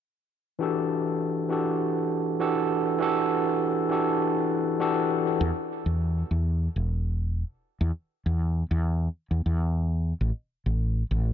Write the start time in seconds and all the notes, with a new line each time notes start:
0.59 E3 D4 F#4 G4 A4
1.48 E3 D4 F#4 G4 A4
2.39 E3 D4 F#4 G4 A4
2.98 E3 D4 F#4 G4 A4
3.89 E3 D4 F#4 G4 A4
4.80 E3 D4 F#4 G4 A4
5.41 E2
5.86 E2
6.31 E2
6.76 E1
7.81 E2
8.26 E2
8.71 E2
9.31 E2
9.46 E2
10.21 A1
10.66 A1
11.11 A1